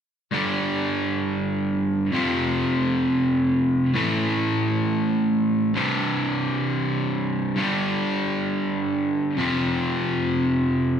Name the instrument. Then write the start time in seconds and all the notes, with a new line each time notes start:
overdriven electric guitar
0.31 G2 D3 G3
2.12 F2 C3 F3
3.94 A2 E3 A3
5.74 C2 G2 C3
7.56 G2 D3 G3
9.37 F2 C3 F3